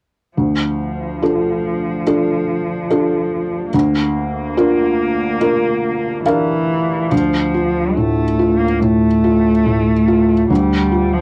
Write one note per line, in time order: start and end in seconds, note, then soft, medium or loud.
0.37 1.20 D2 soft
0.37 3.69 F3 soft
1.22 2.03 D4 soft
1.22 2.03 F4 soft
1.22 2.03 A4 soft
2.07 2.86 D4 soft
2.07 2.86 F4 soft
2.07 2.87 A4 soft
2.90 3.69 D4 soft
2.90 3.69 F4 soft
2.90 3.70 A4 soft
3.73 4.54 D2 soft
3.73 6.22 A#3 medium
4.57 5.37 D4 soft
4.57 5.37 F4 soft
4.57 5.37 A#4 soft
5.41 6.22 D4 soft
5.41 6.22 F4 soft
5.41 6.22 A#4 soft
6.25 7.13 E3 medium
6.25 7.08 D4 soft
6.25 7.08 A#4 soft
6.25 7.08 F5 soft
7.11 10.46 D2 soft
7.11 8.77 D2 soft
7.11 7.96 F3 soft
7.54 8.22 F4 soft
7.94 8.65 A2 soft
7.94 8.60 A3 medium
8.39 9.07 F4 soft
8.59 8.81 A#3 medium
8.80 9.49 A2 soft
8.80 10.49 A3 medium
9.24 9.91 F4 soft
9.66 10.33 A2 soft
10.08 10.50 F4 soft
10.49 11.21 D2 soft
10.49 11.14 G3 medium
10.92 11.21 F4 soft
11.13 11.21 F3 soft